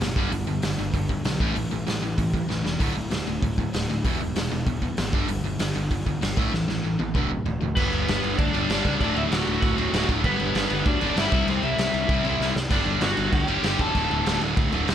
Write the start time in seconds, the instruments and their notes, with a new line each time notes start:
0.01 picked electric bass F#1, overdriven electric guitar E2 B2, snare, open hi-hat
0.16 picked electric bass G1, overdriven electric guitar G2 D3 G3, kick
0.32 picked electric bass G1, overdriven electric guitar G2 D3, open hi-hat
0.47 picked electric bass G1, overdriven electric guitar G2 D3
0.62 picked electric bass G1, overdriven electric guitar G2 D3, snare, open hi-hat
0.79 picked electric bass G1, overdriven electric guitar G2 D3
0.93 picked electric bass G1, overdriven electric guitar G2 D3, kick, open hi-hat
1.09 overdriven electric guitar G2 D3, kick
1.24 picked electric bass B1, overdriven electric guitar G2 D3, snare, open hi-hat
1.40 picked electric bass A1, overdriven electric guitar A2 E3 A3, kick
1.56 picked electric bass A1, overdriven electric guitar A2 E3, open hi-hat
1.71 picked electric bass A1, overdriven electric guitar A2 E3
1.87 picked electric bass A1, overdriven electric guitar A2 E3, snare, open hi-hat
2.02 picked electric bass A1, overdriven electric guitar A2 E3
2.18 picked electric bass A1, overdriven electric guitar A2 E3, kick, open hi-hat
2.34 overdriven electric guitar A2 E3, kick
2.49 picked electric bass A1, overdriven electric guitar A2 E3, snare
2.64 picked electric bass E1, overdriven electric guitar A2 E3, snare
2.79 picked electric bass D1, overdriven electric guitar D2 A2 D3, kick, open hi-hat, splash
2.95 picked electric bass D1, overdriven electric guitar D2 A2
3.11 picked electric bass D1, overdriven electric guitar D2 A2, snare, open hi-hat
3.27 picked electric bass D1, overdriven electric guitar D2 A2
3.42 picked electric bass D1, overdriven electric guitar D2 A2, kick, open hi-hat
3.58 overdriven electric guitar D2 A2, kick
3.73 picked electric bass D1, overdriven electric guitar D2 A2, snare, open hi-hat
3.89 picked electric bass D1, overdriven electric guitar D2 A2
4.05 picked electric bass E1, overdriven electric guitar E2 B2 E3, kick, open hi-hat
4.20 picked electric bass E1, overdriven electric guitar E2 B2
4.36 picked electric bass E1, overdriven electric guitar E2 B2, snare, open hi-hat
4.51 picked electric bass E1, overdriven electric guitar E2 B2
4.66 picked electric bass E1, overdriven electric guitar E2 B2, kick, open hi-hat
4.82 overdriven electric guitar E2 B2, kick
4.97 picked electric bass G#1, overdriven electric guitar E2 B2, snare, open hi-hat
5.13 picked electric bass G1, overdriven electric guitar G2 D3 G3, kick
5.28 picked electric bass G1, overdriven electric guitar G2 D3, open hi-hat
5.44 picked electric bass G1, overdriven electric guitar G2 D3
5.59 picked electric bass G1, overdriven electric guitar G2 D3, snare, open hi-hat
5.75 picked electric bass G1, overdriven electric guitar G2 D3
5.91 picked electric bass G1, overdriven electric guitar G2 D3, kick, open hi-hat
6.06 overdriven electric guitar G2 D3, kick
6.21 picked electric bass G1, overdriven electric guitar G2 D3, snare, open hi-hat
6.36 picked electric bass A1, overdriven electric guitar A2 E3 A3, kick
6.53 picked electric bass A1, overdriven electric guitar A2 E3, snare
6.68 picked electric bass A1, overdriven electric guitar A2 E3, snare
6.83 picked electric bass A1, overdriven electric guitar A2 E3
6.99 picked electric bass A1, overdriven electric guitar A2 E3, high tom
7.14 picked electric bass D1, overdriven electric guitar D2 A2 D3, kick, mid tom
7.31 overdriven electric guitar D2 A2
7.45 picked electric bass D1, overdriven electric guitar D2 A2, floor tom
7.61 picked electric bass D1, overdriven electric guitar D2 A2, floor tom
7.76 picked electric bass G1, overdriven electric guitar G2 D3 G3, lead electric guitar B3 B4, kick, crash
7.93 picked electric bass G1, crash
8.08 picked electric bass G1, snare, crash
8.24 picked electric bass G1, crash
8.38 picked electric bass D2, lead electric guitar D4 D5, kick, crash
8.53 picked electric bass G1, overdriven electric guitar G2 D3 G3, crash
8.69 picked electric bass G1, overdriven electric guitar G2 D3 G3, snare, crash
8.85 picked electric bass C#2, kick, crash
9.00 picked electric bass D1, overdriven electric guitar D2 A2 D3, lead electric guitar D4 D5, kick, crash
9.15 picked electric bass D1, lead electric guitar E4 E5, crash
9.31 picked electric bass D1, lead electric guitar F#4 F#5, snare, crash
9.47 picked electric bass D1, crash
9.62 picked electric bass D1, kick, crash
9.77 picked electric bass D1, overdriven electric guitar D2 A2 D3, crash
9.92 picked electric bass D1, overdriven electric guitar D2 A2 D3, snare, crash
10.09 picked electric bass D1, kick, crash
10.23 picked electric bass G1, overdriven electric guitar G2 D3 G3, lead electric guitar B3 B4, kick, crash
10.39 picked electric bass G1, crash
10.55 picked electric bass G1, snare, crash
10.70 picked electric bass G1, crash
10.86 picked electric bass D2, lead electric guitar D4 D5, kick, crash
11.00 picked electric bass G1, overdriven electric guitar G2 D3 G3, crash
11.10 lead electric guitar D4 D5
11.16 picked electric bass G1, overdriven electric guitar G2 D3 G3, lead electric guitar E4 E5, snare, crash
11.32 picked electric bass C2, overdriven electric guitar C3 G3 C4, kick, crash
11.47 picked electric bass C2, lead electric guitar C4 C5, crash
11.63 picked electric bass C2, lead electric guitar E4 E5, crash
11.77 picked electric bass C2, snare, crash
11.94 picked electric bass C2, crash
12.08 picked electric bass C2, overdriven electric guitar C3 G3 C4, kick, crash
12.23 picked electric bass C2, overdriven electric guitar C3 G3 C4, crash
12.40 picked electric bass C2, snare
12.56 picked electric bass C2, snare
12.69 picked electric bass G1, overdriven electric guitar G2 D3 G3, lead electric guitar D4 D5, kick, splash, crash
12.86 picked electric bass G1, crash
13.01 picked electric bass G1, lead electric guitar F#4 F#5, snare, crash
13.17 picked electric bass G1, crash
13.32 picked electric bass D2, lead electric guitar G4 G5, kick, crash
13.47 picked electric bass G1, overdriven electric guitar G2 D3 G3, crash
13.63 picked electric bass G1, overdriven electric guitar G2 D3 G3, snare, crash
13.79 picked electric bass E1, lead electric guitar A4 A5, kick, crash
13.95 picked electric bass D1, overdriven electric guitar D2 A2 D3, kick, crash
14.11 picked electric bass D1, crash
14.26 picked electric bass D1, snare, crash
14.41 picked electric bass D1, crash
14.57 picked electric bass D1, kick, crash
14.72 picked electric bass D1, overdriven electric guitar D2 A2 D3, crash
14.88 picked electric bass D1, overdriven electric guitar D2 A2 D3, snare, crash